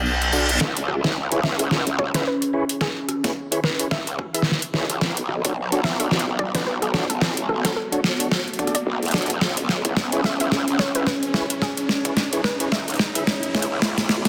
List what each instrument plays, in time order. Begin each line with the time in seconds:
Already playing: wobble bass B1, ambient pad B3 F#4 C#6, synth pluck D5, reverse cymbal
0.06 tambourine
0.22 closed hi-hat
0.33 tonewheel organ D4 F#4 A4 D5, tambourine
0.49 closed hi-hat, tambourine
0.61 wobble bass C#2, ambient pad C#4, kick, snare, riser
0.77 closed hi-hat
0.88 cross-stick
0.95 ambient pad G#4
1.04 wobble bass C#2, tonewheel organ E4 G#4 B4 C#5, kick, snare
1.32 tonewheel organ E4 G#4 B4 C#5, closed hi-hat
1.43 synth pluck E5, snare
1.59 tonewheel organ E4 G#4 B4 C#5, synth pluck E5, closed hi-hat
1.71 snare
1.87 wobble bass C#2, closed hi-hat
1.99 synth pluck C#5, kick, cross-stick
2.14 wobble bass C#2, tonewheel organ E4 G#4 B4 E5, synth pluck B4, snare, closed hi-hat
2.27 synth pluck B4
2.42 closed hi-hat
2.53 tonewheel organ E4 G#4 B4 C#5
2.69 closed hi-hat
2.81 synth pluck G#4, kick, snare
3.09 cross-stick, closed hi-hat
3.24 tonewheel organ E4 G#4 B4 C#5, kick, snare, closed hi-hat
3.51 tonewheel organ E4 G#4 B4 C#5, closed hi-hat
3.64 synth pluck B4, snare
3.79 tonewheel organ E4 G#4 B4 C#5, closed hi-hat
3.91 wobble bass C#2, synth pluck E5, kick, snare
4.07 closed hi-hat
4.19 kick, cross-stick
4.34 tonewheel organ E4 G#4 B4 E5, closed hi-hat
4.42 snare
4.51 snare
4.62 closed hi-hat
4.73 wobble bass C#2, tonewheel organ E4 G#4 B4 C#5, snare
4.90 cross-stick, closed hi-hat
5.01 wobble bass B1, ambient pad B3, kick, snare
5.17 closed hi-hat
5.29 ambient pad F#4, cross-stick
5.45 wobble bass B1, tonewheel organ D4 F#4 A4 C#5, kick, closed hi-hat
5.72 tonewheel organ D4 F#4 A4 C#5, closed hi-hat
5.84 synth pluck E5, snare
6.00 tonewheel organ D4 F#4 A4 C#5, synth pluck E5, closed hi-hat
6.11 snare
6.19 closed hi-hat
6.27 wobble bass B1
6.39 synth pluck D5, kick, cross-stick
6.54 wobble bass B1, tonewheel organ D4 F#4 A4 D5, synth pluck B4, snare, closed hi-hat
6.66 wobble bass B1, synth pluck B4
6.82 synth pluck A4, closed hi-hat
6.94 tonewheel organ D4 F#4 A4 C#5, snare
7.10 wobble bass A1, synth pluck A4, closed hi-hat
7.21 kick, snare
7.37 closed hi-hat
7.49 wobble bass A1, synth pluck A4, cross-stick
7.65 tonewheel organ D4 F#4 A4 C#5, synth pluck A4, kick, snare, closed hi-hat
7.76 synth pluck A4
7.92 tonewheel organ D4 F#4 A4 C#5, closed hi-hat
8.04 snare
8.19 tonewheel organ D4 F#4 A4 C#5, closed hi-hat
8.31 kick, snare
8.48 closed hi-hat
8.53 closed hi-hat
8.59 tonewheel organ D4 F#4 A4 D5, kick, closed hi-hat
8.67 cross-stick, closed hi-hat
8.75 synth pluck D5, closed hi-hat
8.87 wobble bass B1
9.03 wobble bass E2, closed hi-hat
9.05 closed hi-hat
9.08 closed hi-hat
9.11 tonewheel organ D4 F#4 A4 D5, snare, closed hi-hat
9.18 closed hi-hat
9.22 closed hi-hat
9.26 cross-stick, closed hi-hat
9.30 closed hi-hat
9.41 wobble bass C#2, ambient pad C#4, kick, snare
9.57 closed hi-hat
9.69 ambient pad G#4 C#5, snare
9.85 wobble bass C#2, tonewheel organ E4 G#4 B4 C#5, kick, closed hi-hat
9.97 snare
10.12 tonewheel organ E4 G#4 B4 C#5, closed hi-hat
10.24 synth pluck E5, snare
10.40 tonewheel organ E4 G#4 B4 C#5, synth pluck E5, closed hi-hat
10.52 snare
10.68 wobble bass C#2, closed hi-hat
10.79 synth pluck C#5, kick, snare
10.95 wobble bass C#2, tonewheel organ E4 G#4 B4 E5, synth pluck B4, closed hi-hat
11.07 synth pluck B4, snare
11.23 closed hi-hat
11.34 tonewheel organ E4 G#4 B4 C#5, snare
11.50 closed hi-hat
11.62 synth pluck G#4, kick, snare
11.77 closed hi-hat
11.89 snare
12.05 tonewheel organ E4 G#4 B4 C#5, kick, closed hi-hat
12.17 snare
12.33 tonewheel organ E4 G#4 B4 C#5, closed hi-hat
12.44 synth pluck B4, snare
12.60 tonewheel organ E4 G#4 B4 C#5, closed hi-hat
12.72 wobble bass C#2, synth pluck E5, kick, snare
12.88 closed hi-hat
12.90 closed hi-hat
12.94 closed hi-hat
12.96 closed hi-hat
12.97 kick, snare, closed hi-hat
13.15 tonewheel organ E4 G#4 B4 E5, closed hi-hat
13.27 snare
13.43 closed hi-hat
13.54 wobble bass C#2, tonewheel organ E4 G#4 B4 C#5, snare
13.62 closed hi-hat
13.81 ambient pad B3, kick, snare
13.98 snare, closed hi-hat
14.09 snare
14.25 tonewheel organ D4 F#4 A4 C#5, kick, snare, closed hi-hat